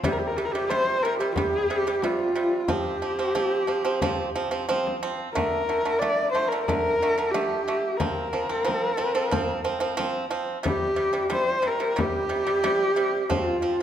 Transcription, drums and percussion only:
0.04 frame drum medium
0.54 frame drum soft
0.71 frame drum medium
1.03 frame drum soft
1.36 frame drum medium
1.86 frame drum soft
2.02 frame drum medium
2.68 frame drum medium
3.18 frame drum soft
3.35 frame drum soft
3.68 frame drum soft
4.02 frame drum medium
4.53 frame drum soft
4.70 frame drum medium
4.87 frame drum soft
5.37 frame drum medium
5.85 frame drum soft
6.01 frame drum soft
6.34 frame drum soft
6.68 frame drum medium
7.34 frame drum medium
8.00 frame drum medium
8.50 frame drum soft
8.68 frame drum medium
9.00 frame drum soft
9.32 frame drum medium
9.83 frame drum soft
9.99 frame drum medium
10.66 frame drum medium
11.15 frame drum soft
11.31 frame drum medium
11.66 frame drum soft
11.98 frame drum medium
12.48 frame drum soft
12.64 frame drum medium
13.30 frame drum medium

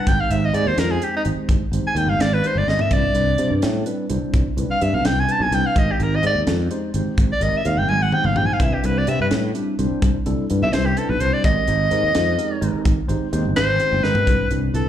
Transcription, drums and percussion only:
0.07 kick loud
0.07 closed hi-hat medium
0.31 closed hi-hat medium
0.54 closed hi-hat medium
0.78 snare loud
0.78 closed hi-hat medium
1.02 closed hi-hat medium
1.25 closed hi-hat medium
1.49 kick loud
1.49 closed hi-hat medium
1.73 closed hi-hat medium
1.96 closed hi-hat medium
2.20 snare loud
2.20 closed hi-hat medium
2.44 closed hi-hat medium
2.68 snare medium
2.79 floor tom medium
2.91 kick loud
2.91 closed hi-hat medium
3.15 closed hi-hat medium
3.38 closed hi-hat medium
3.62 snare loud
3.62 closed hi-hat medium
3.86 closed hi-hat medium
4.10 closed hi-hat medium
4.34 kick loud
4.34 closed hi-hat medium
4.58 closed hi-hat medium
4.81 closed hi-hat medium
5.05 snare loud
5.05 closed hi-hat medium
5.29 closed hi-hat medium
5.52 closed hi-hat medium
5.76 kick loud
5.76 closed hi-hat medium
6.00 closed hi-hat medium
6.23 closed hi-hat medium
6.47 snare loud
6.47 closed hi-hat medium
6.71 closed hi-hat soft
6.94 closed hi-hat medium
7.18 kick loud
7.18 closed hi-hat medium
7.41 closed hi-hat medium
7.65 closed hi-hat medium
7.89 high tom medium
8.12 mid tom medium
8.24 mid tom medium
8.36 floor tom medium
8.60 kick loud
8.60 closed hi-hat medium
8.84 closed hi-hat medium
9.07 closed hi-hat medium
9.31 snare loud
9.31 closed hi-hat medium
9.55 closed hi-hat medium
9.79 closed hi-hat medium
10.02 kick loud
10.02 closed hi-hat medium
10.26 closed hi-hat medium
10.50 closed hi-hat medium
10.73 snare loud
10.73 closed hi-hat medium
10.97 closed hi-hat medium
11.20 closed hi-hat medium
11.44 kick loud
11.44 closed hi-hat medium
11.68 closed hi-hat medium
11.91 closed hi-hat medium
12.15 snare loud
12.15 closed hi-hat medium
12.39 closed hi-hat medium
12.62 closed hi-hat medium
12.85 kick loud
12.85 closed hi-hat medium
13.09 closed hi-hat medium
13.33 closed hi-hat medium
13.56 snare loud
13.56 closed hi-hat medium
13.80 closed hi-hat medium
14.04 snare medium
14.15 floor tom loud
14.27 kick loud
14.27 closed hi-hat medium
14.51 closed hi-hat medium
14.75 closed hi-hat medium

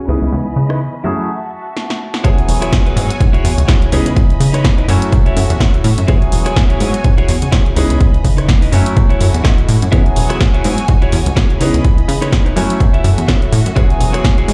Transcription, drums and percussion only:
0.70 cross-stick medium
1.77 snare medium
1.90 snare medium
2.14 snare medium
2.25 kick loud
2.25 closed hi-hat medium
2.38 closed hi-hat soft
2.49 open hi-hat loud
2.62 cross-stick medium
2.62 closed hi-hat medium
2.73 kick loud
2.73 snare loud
2.73 closed hi-hat medium
2.86 closed hi-hat soft
2.97 open hi-hat loud
3.10 closed hi-hat medium
3.21 kick loud
3.21 closed hi-hat medium
3.34 closed hi-hat soft
3.45 open hi-hat loud
3.58 closed hi-hat medium
3.69 kick loud
3.69 snare loud
3.69 closed hi-hat medium
3.82 closed hi-hat soft
3.92 open hi-hat loud
4.06 closed hi-hat medium
4.16 kick loud
4.16 closed hi-hat medium
4.30 closed hi-hat soft
4.41 open hi-hat loud
4.54 cross-stick medium
4.54 closed hi-hat medium
4.64 kick loud
4.64 snare loud
4.64 closed hi-hat medium
4.78 closed hi-hat soft
4.89 open hi-hat loud
5.02 closed hi-hat medium
5.12 kick loud
5.12 closed hi-hat medium
5.26 closed hi-hat soft
5.37 open hi-hat loud
5.50 closed hi-hat medium
5.60 kick loud
5.60 snare loud
5.60 closed hi-hat medium
5.74 closed hi-hat soft
5.84 open hi-hat loud
5.98 closed hi-hat medium
6.08 kick loud
6.08 closed hi-hat medium
6.22 closed hi-hat soft
6.32 open hi-hat loud
6.46 cross-stick medium
6.46 closed hi-hat medium
6.56 kick loud
6.56 snare loud
6.56 closed hi-hat soft
6.70 closed hi-hat soft
6.80 open hi-hat loud
6.94 closed hi-hat medium
7.04 kick loud
7.04 closed hi-hat medium
7.18 closed hi-hat soft
7.29 open hi-hat loud
7.42 closed hi-hat medium
7.52 kick loud
7.52 snare loud
7.52 closed hi-hat medium
7.66 closed hi-hat soft
7.76 open hi-hat loud
7.90 closed hi-hat medium
8.01 kick loud
8.01 closed hi-hat medium
8.14 closed hi-hat soft
8.25 kick medium
8.25 open hi-hat loud
8.38 cross-stick medium
8.38 closed hi-hat soft
8.49 kick loud
8.49 snare loud
8.49 closed hi-hat soft
8.62 open hi-hat medium
8.73 open hi-hat loud
8.86 closed hi-hat soft
8.97 kick loud
8.97 closed hi-hat medium
9.10 closed hi-hat soft
9.21 open hi-hat loud
9.34 closed hi-hat soft
9.45 kick loud
9.45 cross-stick medium
9.45 snare loud
9.45 closed hi-hat soft
9.58 closed hi-hat soft
9.69 open hi-hat loud
9.82 closed hi-hat medium
9.93 kick loud
9.93 closed hi-hat medium
10.06 closed hi-hat soft
10.16 open hi-hat loud
10.30 cross-stick medium
10.30 closed hi-hat medium
10.41 kick loud
10.41 snare loud
10.41 closed hi-hat soft
10.54 closed hi-hat soft
10.64 open hi-hat loud
10.78 closed hi-hat medium
10.88 kick loud
10.88 closed hi-hat medium
11.02 closed hi-hat soft
11.12 open hi-hat loud
11.26 closed hi-hat medium
11.37 kick loud
11.37 snare loud
11.37 closed hi-hat medium
11.50 closed hi-hat soft
11.61 open hi-hat loud
11.74 closed hi-hat medium
11.85 kick loud
11.85 closed hi-hat medium
11.98 closed hi-hat soft
12.09 open hi-hat loud
12.22 cross-stick medium
12.22 closed hi-hat medium
12.32 kick loud
12.32 snare loud
12.32 closed hi-hat medium
12.46 closed hi-hat soft
12.57 open hi-hat loud
12.70 closed hi-hat medium
12.80 kick loud
12.80 closed hi-hat medium
12.94 closed hi-hat soft
13.04 open hi-hat loud
13.18 closed hi-hat medium
13.28 kick loud
13.28 snare loud
13.28 closed hi-hat medium
13.42 closed hi-hat soft
13.53 open hi-hat loud
13.66 closed hi-hat medium
13.76 kick loud
13.76 closed hi-hat medium
13.90 closed hi-hat soft
14.01 open hi-hat loud
14.14 cross-stick medium
14.14 closed hi-hat medium
14.24 kick loud
14.24 snare loud
14.24 closed hi-hat medium
14.38 closed hi-hat soft
14.48 open hi-hat loud

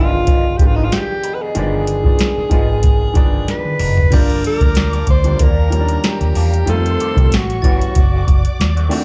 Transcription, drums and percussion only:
0.27 kick medium
0.27 closed hi-hat medium
0.59 kick medium
0.59 closed hi-hat medium
0.92 snare medium
0.92 closed hi-hat medium
1.24 closed hi-hat medium
1.55 closed hi-hat medium
1.87 closed hi-hat medium
2.04 kick medium
2.19 snare loud
2.19 closed hi-hat medium
2.51 kick medium
2.51 closed hi-hat medium
2.83 kick medium
2.83 closed hi-hat medium
3.15 kick medium
3.15 closed hi-hat medium
3.48 snare soft
3.48 closed hi-hat medium
3.65 high tom medium
3.79 mid tom medium
3.79 open hi-hat medium
3.97 floor tom medium
4.12 kick loud
4.12 closed hi-hat medium
4.12 crash medium
4.30 closed hi-hat soft
4.44 closed hi-hat medium
4.61 kick medium
4.61 closed hi-hat soft
4.75 snare loud
4.75 closed hi-hat medium
4.93 closed hi-hat soft
5.07 kick medium
5.07 closed hi-hat medium
5.24 closed hi-hat soft
5.39 kick medium
5.39 closed hi-hat medium
5.72 closed hi-hat medium
5.88 closed hi-hat soft
6.04 snare loud
6.04 closed hi-hat medium
6.21 closed hi-hat soft
6.35 open hi-hat medium
6.54 closed hi-hat soft
6.67 closed hi-hat medium
6.86 closed hi-hat soft
7.00 closed hi-hat medium
7.17 kick medium
7.17 closed hi-hat soft
7.32 snare loud
7.32 closed hi-hat medium
7.50 closed hi-hat soft
7.63 kick medium
7.63 closed hi-hat medium
7.81 closed hi-hat soft
7.95 kick medium
7.95 closed hi-hat medium
8.28 kick medium
8.28 closed hi-hat medium
8.45 closed hi-hat medium
8.61 snare loud
8.61 closed hi-hat medium
8.77 closed hi-hat soft
8.91 open hi-hat medium

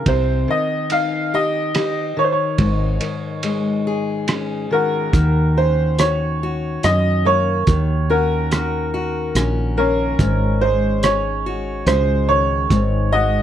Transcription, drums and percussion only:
0.06 kick medium
0.06 ride soft
0.90 ride soft
1.75 cross-stick medium
1.75 ride medium
2.58 kick medium
2.58 ride soft
3.01 ride soft
3.43 ride soft
4.28 cross-stick medium
4.28 ride soft
5.13 kick medium
5.13 closed hi-hat soft
5.99 cross-stick medium
5.99 closed hi-hat soft
6.83 cross-stick medium
6.83 closed hi-hat soft
7.67 kick medium
7.67 closed hi-hat soft
8.51 cross-stick medium
8.51 closed hi-hat soft
9.35 cross-stick medium
9.35 closed hi-hat soft
10.19 kick medium
10.19 closed hi-hat soft
11.03 cross-stick medium
11.03 closed hi-hat soft
11.87 cross-stick medium
11.87 closed hi-hat soft
12.70 kick medium
12.70 closed hi-hat soft

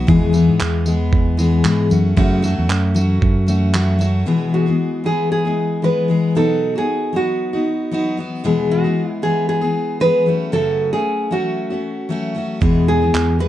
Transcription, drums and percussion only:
0.08 kick loud
0.34 tambourine medium
0.60 clap loud
0.86 tambourine medium
1.13 kick loud
1.39 tambourine medium
1.65 clap medium
1.91 tambourine medium
2.17 kick loud
2.44 tambourine medium
2.70 clap loud
2.96 tambourine medium
3.22 kick loud
3.48 tambourine medium
3.74 clap loud
4.01 tambourine medium
12.62 kick loud
13.15 clap loud

